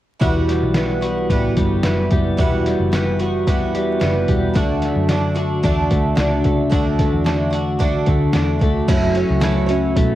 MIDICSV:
0, 0, Header, 1, 5, 480
1, 0, Start_track
1, 0, Tempo, 541516
1, 186, Time_signature, 4, 2, 24, 8
1, 8998, End_track
2, 0, Start_track
2, 0, Title_t, "Twelve-string acoustic guitar"
2, 0, Program_c, 0, 25
2, 174, Note_on_c, 0, 52, 74
2, 185, Note_on_c, 0, 55, 73
2, 188, Note_on_c, 0, 59, 80
2, 193, Note_on_c, 0, 66, 88
2, 651, Note_off_c, 0, 52, 0
2, 655, Note_off_c, 0, 55, 0
2, 662, Note_on_c, 0, 52, 48
2, 666, Note_on_c, 0, 55, 55
2, 669, Note_off_c, 0, 59, 0
2, 682, Note_on_c, 0, 59, 54
2, 685, Note_off_c, 0, 66, 0
2, 689, Note_on_c, 0, 66, 62
2, 885, Note_off_c, 0, 66, 0
2, 895, Note_on_c, 0, 66, 53
2, 899, Note_off_c, 0, 59, 0
2, 906, Note_off_c, 0, 52, 0
2, 908, Note_off_c, 0, 55, 0
2, 909, Note_on_c, 0, 59, 44
2, 922, Note_on_c, 0, 55, 41
2, 1143, Note_off_c, 0, 66, 0
2, 1145, Note_off_c, 0, 55, 0
2, 1150, Note_off_c, 0, 59, 0
2, 1150, Note_on_c, 0, 52, 70
2, 1156, Note_on_c, 0, 55, 71
2, 1162, Note_on_c, 0, 59, 67
2, 1167, Note_on_c, 0, 66, 83
2, 1611, Note_off_c, 0, 52, 0
2, 1621, Note_on_c, 0, 52, 63
2, 1629, Note_off_c, 0, 55, 0
2, 1632, Note_off_c, 0, 59, 0
2, 1639, Note_on_c, 0, 55, 61
2, 1643, Note_on_c, 0, 59, 56
2, 1646, Note_off_c, 0, 66, 0
2, 1650, Note_on_c, 0, 66, 54
2, 2091, Note_off_c, 0, 52, 0
2, 2102, Note_on_c, 0, 52, 77
2, 2103, Note_off_c, 0, 55, 0
2, 2113, Note_off_c, 0, 59, 0
2, 2113, Note_on_c, 0, 55, 77
2, 2124, Note_off_c, 0, 66, 0
2, 2124, Note_on_c, 0, 59, 80
2, 2128, Note_on_c, 0, 66, 83
2, 2573, Note_off_c, 0, 52, 0
2, 2582, Note_off_c, 0, 55, 0
2, 2584, Note_on_c, 0, 52, 57
2, 2593, Note_on_c, 0, 55, 58
2, 2595, Note_off_c, 0, 59, 0
2, 2605, Note_on_c, 0, 59, 62
2, 2611, Note_off_c, 0, 66, 0
2, 2615, Note_on_c, 0, 66, 64
2, 2817, Note_off_c, 0, 66, 0
2, 2828, Note_on_c, 0, 66, 48
2, 2829, Note_off_c, 0, 52, 0
2, 2830, Note_off_c, 0, 59, 0
2, 2834, Note_off_c, 0, 55, 0
2, 2840, Note_on_c, 0, 59, 49
2, 2856, Note_on_c, 0, 55, 41
2, 3071, Note_off_c, 0, 55, 0
2, 3071, Note_off_c, 0, 66, 0
2, 3074, Note_on_c, 0, 52, 77
2, 3077, Note_off_c, 0, 59, 0
2, 3082, Note_on_c, 0, 55, 76
2, 3089, Note_on_c, 0, 59, 80
2, 3092, Note_on_c, 0, 66, 76
2, 3532, Note_off_c, 0, 52, 0
2, 3542, Note_on_c, 0, 52, 63
2, 3544, Note_off_c, 0, 55, 0
2, 3553, Note_off_c, 0, 59, 0
2, 3555, Note_on_c, 0, 55, 62
2, 3564, Note_on_c, 0, 59, 59
2, 3568, Note_off_c, 0, 66, 0
2, 3572, Note_on_c, 0, 66, 63
2, 4018, Note_off_c, 0, 52, 0
2, 4021, Note_on_c, 0, 50, 69
2, 4022, Note_off_c, 0, 55, 0
2, 4026, Note_on_c, 0, 57, 68
2, 4033, Note_off_c, 0, 59, 0
2, 4037, Note_on_c, 0, 62, 77
2, 4041, Note_off_c, 0, 66, 0
2, 4045, Note_on_c, 0, 66, 83
2, 4496, Note_off_c, 0, 50, 0
2, 4507, Note_on_c, 0, 50, 62
2, 4513, Note_off_c, 0, 57, 0
2, 4517, Note_off_c, 0, 62, 0
2, 4517, Note_on_c, 0, 57, 62
2, 4526, Note_on_c, 0, 62, 65
2, 4527, Note_off_c, 0, 66, 0
2, 4530, Note_on_c, 0, 66, 61
2, 4729, Note_off_c, 0, 66, 0
2, 4739, Note_on_c, 0, 66, 58
2, 4745, Note_off_c, 0, 62, 0
2, 4752, Note_off_c, 0, 50, 0
2, 4756, Note_on_c, 0, 62, 48
2, 4757, Note_off_c, 0, 57, 0
2, 4771, Note_on_c, 0, 57, 43
2, 4988, Note_off_c, 0, 66, 0
2, 4989, Note_on_c, 0, 50, 68
2, 4990, Note_off_c, 0, 57, 0
2, 4996, Note_off_c, 0, 62, 0
2, 5001, Note_on_c, 0, 57, 73
2, 5008, Note_on_c, 0, 62, 86
2, 5010, Note_on_c, 0, 66, 80
2, 5443, Note_off_c, 0, 50, 0
2, 5453, Note_on_c, 0, 50, 60
2, 5462, Note_off_c, 0, 57, 0
2, 5462, Note_off_c, 0, 62, 0
2, 5466, Note_on_c, 0, 57, 63
2, 5473, Note_on_c, 0, 62, 66
2, 5481, Note_off_c, 0, 66, 0
2, 5484, Note_on_c, 0, 66, 65
2, 5923, Note_off_c, 0, 50, 0
2, 5934, Note_on_c, 0, 50, 66
2, 5940, Note_off_c, 0, 57, 0
2, 5940, Note_off_c, 0, 62, 0
2, 5943, Note_on_c, 0, 57, 82
2, 5951, Note_on_c, 0, 62, 81
2, 5953, Note_off_c, 0, 66, 0
2, 5957, Note_on_c, 0, 66, 89
2, 6407, Note_off_c, 0, 50, 0
2, 6418, Note_on_c, 0, 50, 56
2, 6424, Note_off_c, 0, 62, 0
2, 6428, Note_off_c, 0, 57, 0
2, 6432, Note_on_c, 0, 57, 60
2, 6435, Note_on_c, 0, 62, 60
2, 6444, Note_off_c, 0, 66, 0
2, 6447, Note_on_c, 0, 66, 61
2, 6639, Note_off_c, 0, 66, 0
2, 6650, Note_on_c, 0, 66, 54
2, 6657, Note_off_c, 0, 62, 0
2, 6667, Note_off_c, 0, 50, 0
2, 6667, Note_on_c, 0, 62, 50
2, 6671, Note_off_c, 0, 57, 0
2, 6681, Note_on_c, 0, 57, 41
2, 6895, Note_off_c, 0, 57, 0
2, 6902, Note_off_c, 0, 66, 0
2, 6902, Note_on_c, 0, 50, 73
2, 6905, Note_off_c, 0, 62, 0
2, 6906, Note_on_c, 0, 57, 77
2, 6915, Note_on_c, 0, 62, 81
2, 6919, Note_on_c, 0, 66, 91
2, 7368, Note_off_c, 0, 50, 0
2, 7379, Note_on_c, 0, 50, 57
2, 7389, Note_off_c, 0, 57, 0
2, 7390, Note_off_c, 0, 62, 0
2, 7392, Note_on_c, 0, 57, 60
2, 7401, Note_on_c, 0, 62, 65
2, 7406, Note_off_c, 0, 66, 0
2, 7410, Note_on_c, 0, 66, 67
2, 7605, Note_off_c, 0, 66, 0
2, 7616, Note_on_c, 0, 66, 45
2, 7619, Note_off_c, 0, 62, 0
2, 7626, Note_off_c, 0, 50, 0
2, 7629, Note_on_c, 0, 62, 40
2, 7633, Note_off_c, 0, 57, 0
2, 7646, Note_on_c, 0, 57, 40
2, 7862, Note_off_c, 0, 57, 0
2, 7864, Note_off_c, 0, 66, 0
2, 7869, Note_on_c, 0, 54, 80
2, 7871, Note_off_c, 0, 62, 0
2, 7872, Note_on_c, 0, 57, 81
2, 7876, Note_on_c, 0, 64, 88
2, 7884, Note_on_c, 0, 73, 90
2, 7885, Note_on_c, 0, 66, 91
2, 8092, Note_off_c, 0, 73, 0
2, 8103, Note_off_c, 0, 66, 0
2, 8103, Note_on_c, 0, 73, 57
2, 8110, Note_off_c, 0, 54, 0
2, 8112, Note_off_c, 0, 57, 0
2, 8113, Note_off_c, 0, 64, 0
2, 8113, Note_on_c, 0, 66, 50
2, 8131, Note_on_c, 0, 64, 44
2, 8332, Note_off_c, 0, 64, 0
2, 8334, Note_on_c, 0, 57, 59
2, 8342, Note_on_c, 0, 64, 68
2, 8345, Note_off_c, 0, 66, 0
2, 8346, Note_off_c, 0, 73, 0
2, 8355, Note_on_c, 0, 66, 64
2, 8361, Note_on_c, 0, 73, 74
2, 8556, Note_off_c, 0, 73, 0
2, 8567, Note_on_c, 0, 73, 58
2, 8572, Note_off_c, 0, 66, 0
2, 8582, Note_off_c, 0, 57, 0
2, 8583, Note_on_c, 0, 66, 48
2, 8586, Note_off_c, 0, 64, 0
2, 8599, Note_on_c, 0, 64, 47
2, 8998, Note_off_c, 0, 64, 0
2, 8998, Note_off_c, 0, 66, 0
2, 8998, Note_off_c, 0, 73, 0
2, 8998, End_track
3, 0, Start_track
3, 0, Title_t, "Clean electric guitar"
3, 0, Program_c, 1, 27
3, 429, Note_on_c, 1, 55, 53
3, 1382, Note_off_c, 1, 55, 0
3, 1393, Note_on_c, 1, 55, 47
3, 1869, Note_off_c, 1, 55, 0
3, 1880, Note_on_c, 1, 55, 51
3, 2355, Note_off_c, 1, 55, 0
3, 2365, Note_on_c, 1, 55, 52
3, 3317, Note_off_c, 1, 55, 0
3, 3327, Note_on_c, 1, 55, 51
3, 3795, Note_off_c, 1, 55, 0
3, 3805, Note_on_c, 1, 55, 52
3, 4089, Note_off_c, 1, 55, 0
3, 4284, Note_on_c, 1, 57, 57
3, 5242, Note_off_c, 1, 57, 0
3, 5246, Note_on_c, 1, 57, 48
3, 5720, Note_off_c, 1, 57, 0
3, 5724, Note_on_c, 1, 57, 50
3, 6204, Note_off_c, 1, 57, 0
3, 6208, Note_on_c, 1, 57, 56
3, 7161, Note_off_c, 1, 57, 0
3, 7164, Note_on_c, 1, 57, 47
3, 7644, Note_off_c, 1, 57, 0
3, 7891, Note_on_c, 1, 42, 81
3, 8126, Note_on_c, 1, 61, 60
3, 8598, Note_off_c, 1, 61, 0
3, 8602, Note_on_c, 1, 61, 64
3, 8838, Note_on_c, 1, 57, 62
3, 8998, Note_off_c, 1, 42, 0
3, 8998, Note_off_c, 1, 57, 0
3, 8998, Note_off_c, 1, 61, 0
3, 8998, End_track
4, 0, Start_track
4, 0, Title_t, "Picked electric bass"
4, 0, Program_c, 2, 34
4, 194, Note_on_c, 2, 28, 90
4, 557, Note_off_c, 2, 28, 0
4, 557, Note_on_c, 2, 35, 79
4, 1125, Note_off_c, 2, 35, 0
4, 1150, Note_on_c, 2, 33, 78
4, 1355, Note_off_c, 2, 33, 0
4, 1391, Note_on_c, 2, 31, 69
4, 1595, Note_off_c, 2, 31, 0
4, 1630, Note_on_c, 2, 30, 82
4, 1835, Note_off_c, 2, 30, 0
4, 1877, Note_on_c, 2, 30, 73
4, 2079, Note_off_c, 2, 30, 0
4, 2114, Note_on_c, 2, 28, 83
4, 2420, Note_off_c, 2, 28, 0
4, 2479, Note_on_c, 2, 30, 64
4, 3313, Note_off_c, 2, 30, 0
4, 3313, Note_on_c, 2, 28, 68
4, 3518, Note_off_c, 2, 28, 0
4, 3560, Note_on_c, 2, 30, 83
4, 3762, Note_off_c, 2, 30, 0
4, 3799, Note_on_c, 2, 28, 71
4, 4002, Note_off_c, 2, 28, 0
4, 4043, Note_on_c, 2, 38, 73
4, 4346, Note_off_c, 2, 38, 0
4, 4399, Note_on_c, 2, 42, 76
4, 4968, Note_off_c, 2, 42, 0
4, 4999, Note_on_c, 2, 40, 75
4, 5202, Note_off_c, 2, 40, 0
4, 5242, Note_on_c, 2, 38, 82
4, 5444, Note_off_c, 2, 38, 0
4, 5478, Note_on_c, 2, 37, 84
4, 5681, Note_off_c, 2, 37, 0
4, 5716, Note_on_c, 2, 37, 66
4, 5920, Note_off_c, 2, 37, 0
4, 5961, Note_on_c, 2, 38, 75
4, 6265, Note_off_c, 2, 38, 0
4, 6320, Note_on_c, 2, 40, 75
4, 7121, Note_off_c, 2, 40, 0
4, 7155, Note_on_c, 2, 38, 73
4, 7359, Note_off_c, 2, 38, 0
4, 7401, Note_on_c, 2, 40, 92
4, 7602, Note_off_c, 2, 40, 0
4, 7634, Note_on_c, 2, 38, 68
4, 7837, Note_off_c, 2, 38, 0
4, 7879, Note_on_c, 2, 30, 87
4, 8181, Note_off_c, 2, 30, 0
4, 8246, Note_on_c, 2, 37, 87
4, 8806, Note_off_c, 2, 37, 0
4, 8830, Note_on_c, 2, 35, 82
4, 8998, Note_off_c, 2, 35, 0
4, 8998, End_track
5, 0, Start_track
5, 0, Title_t, "Drums"
5, 188, Note_on_c, 9, 36, 105
5, 193, Note_on_c, 9, 42, 91
5, 277, Note_off_c, 9, 36, 0
5, 281, Note_off_c, 9, 42, 0
5, 433, Note_on_c, 9, 38, 28
5, 434, Note_on_c, 9, 42, 73
5, 522, Note_off_c, 9, 38, 0
5, 523, Note_off_c, 9, 42, 0
5, 659, Note_on_c, 9, 38, 98
5, 661, Note_on_c, 9, 42, 81
5, 748, Note_off_c, 9, 38, 0
5, 750, Note_off_c, 9, 42, 0
5, 907, Note_on_c, 9, 42, 62
5, 996, Note_off_c, 9, 42, 0
5, 1150, Note_on_c, 9, 36, 79
5, 1156, Note_on_c, 9, 42, 81
5, 1239, Note_off_c, 9, 36, 0
5, 1244, Note_off_c, 9, 42, 0
5, 1389, Note_on_c, 9, 42, 68
5, 1392, Note_on_c, 9, 36, 71
5, 1478, Note_off_c, 9, 42, 0
5, 1481, Note_off_c, 9, 36, 0
5, 1624, Note_on_c, 9, 38, 107
5, 1626, Note_on_c, 9, 42, 88
5, 1713, Note_off_c, 9, 38, 0
5, 1714, Note_off_c, 9, 42, 0
5, 1866, Note_on_c, 9, 42, 54
5, 1873, Note_on_c, 9, 36, 75
5, 1955, Note_off_c, 9, 42, 0
5, 1962, Note_off_c, 9, 36, 0
5, 2112, Note_on_c, 9, 42, 88
5, 2113, Note_on_c, 9, 36, 98
5, 2201, Note_off_c, 9, 42, 0
5, 2202, Note_off_c, 9, 36, 0
5, 2356, Note_on_c, 9, 38, 29
5, 2357, Note_on_c, 9, 42, 65
5, 2445, Note_off_c, 9, 38, 0
5, 2446, Note_off_c, 9, 42, 0
5, 2595, Note_on_c, 9, 38, 91
5, 2597, Note_on_c, 9, 42, 82
5, 2683, Note_off_c, 9, 38, 0
5, 2686, Note_off_c, 9, 42, 0
5, 2832, Note_on_c, 9, 42, 67
5, 2920, Note_off_c, 9, 42, 0
5, 3077, Note_on_c, 9, 36, 89
5, 3081, Note_on_c, 9, 42, 81
5, 3166, Note_off_c, 9, 36, 0
5, 3169, Note_off_c, 9, 42, 0
5, 3322, Note_on_c, 9, 42, 64
5, 3410, Note_off_c, 9, 42, 0
5, 3556, Note_on_c, 9, 38, 111
5, 3557, Note_on_c, 9, 42, 83
5, 3644, Note_off_c, 9, 38, 0
5, 3645, Note_off_c, 9, 42, 0
5, 3795, Note_on_c, 9, 42, 59
5, 3800, Note_on_c, 9, 36, 71
5, 3884, Note_off_c, 9, 42, 0
5, 3889, Note_off_c, 9, 36, 0
5, 4037, Note_on_c, 9, 42, 85
5, 4039, Note_on_c, 9, 36, 107
5, 4126, Note_off_c, 9, 42, 0
5, 4128, Note_off_c, 9, 36, 0
5, 4272, Note_on_c, 9, 38, 28
5, 4273, Note_on_c, 9, 42, 70
5, 4360, Note_off_c, 9, 38, 0
5, 4362, Note_off_c, 9, 42, 0
5, 4511, Note_on_c, 9, 38, 93
5, 4513, Note_on_c, 9, 42, 85
5, 4600, Note_off_c, 9, 38, 0
5, 4602, Note_off_c, 9, 42, 0
5, 4748, Note_on_c, 9, 42, 72
5, 4837, Note_off_c, 9, 42, 0
5, 4996, Note_on_c, 9, 42, 76
5, 4997, Note_on_c, 9, 36, 87
5, 5084, Note_off_c, 9, 42, 0
5, 5086, Note_off_c, 9, 36, 0
5, 5237, Note_on_c, 9, 42, 66
5, 5240, Note_on_c, 9, 36, 82
5, 5325, Note_off_c, 9, 42, 0
5, 5329, Note_off_c, 9, 36, 0
5, 5470, Note_on_c, 9, 38, 107
5, 5471, Note_on_c, 9, 42, 89
5, 5558, Note_off_c, 9, 38, 0
5, 5560, Note_off_c, 9, 42, 0
5, 5710, Note_on_c, 9, 42, 61
5, 5717, Note_on_c, 9, 36, 70
5, 5799, Note_off_c, 9, 42, 0
5, 5805, Note_off_c, 9, 36, 0
5, 5955, Note_on_c, 9, 42, 81
5, 5956, Note_on_c, 9, 36, 109
5, 6044, Note_off_c, 9, 42, 0
5, 6045, Note_off_c, 9, 36, 0
5, 6193, Note_on_c, 9, 38, 26
5, 6194, Note_on_c, 9, 42, 65
5, 6198, Note_on_c, 9, 36, 77
5, 6282, Note_off_c, 9, 38, 0
5, 6283, Note_off_c, 9, 42, 0
5, 6286, Note_off_c, 9, 36, 0
5, 6435, Note_on_c, 9, 38, 94
5, 6438, Note_on_c, 9, 42, 86
5, 6524, Note_off_c, 9, 38, 0
5, 6526, Note_off_c, 9, 42, 0
5, 6671, Note_on_c, 9, 42, 72
5, 6760, Note_off_c, 9, 42, 0
5, 6914, Note_on_c, 9, 36, 79
5, 6914, Note_on_c, 9, 42, 74
5, 7002, Note_off_c, 9, 42, 0
5, 7003, Note_off_c, 9, 36, 0
5, 7148, Note_on_c, 9, 42, 65
5, 7154, Note_on_c, 9, 36, 83
5, 7236, Note_off_c, 9, 42, 0
5, 7243, Note_off_c, 9, 36, 0
5, 7386, Note_on_c, 9, 38, 108
5, 7387, Note_on_c, 9, 42, 76
5, 7474, Note_off_c, 9, 38, 0
5, 7476, Note_off_c, 9, 42, 0
5, 7634, Note_on_c, 9, 36, 79
5, 7635, Note_on_c, 9, 42, 62
5, 7723, Note_off_c, 9, 36, 0
5, 7723, Note_off_c, 9, 42, 0
5, 7874, Note_on_c, 9, 36, 126
5, 7875, Note_on_c, 9, 42, 105
5, 7875, Note_on_c, 9, 49, 103
5, 7963, Note_off_c, 9, 36, 0
5, 7963, Note_off_c, 9, 49, 0
5, 7964, Note_off_c, 9, 42, 0
5, 8109, Note_on_c, 9, 42, 70
5, 8198, Note_off_c, 9, 42, 0
5, 8345, Note_on_c, 9, 38, 106
5, 8347, Note_on_c, 9, 42, 99
5, 8434, Note_off_c, 9, 38, 0
5, 8436, Note_off_c, 9, 42, 0
5, 8588, Note_on_c, 9, 42, 84
5, 8676, Note_off_c, 9, 42, 0
5, 8829, Note_on_c, 9, 36, 95
5, 8835, Note_on_c, 9, 42, 97
5, 8918, Note_off_c, 9, 36, 0
5, 8923, Note_off_c, 9, 42, 0
5, 8998, End_track
0, 0, End_of_file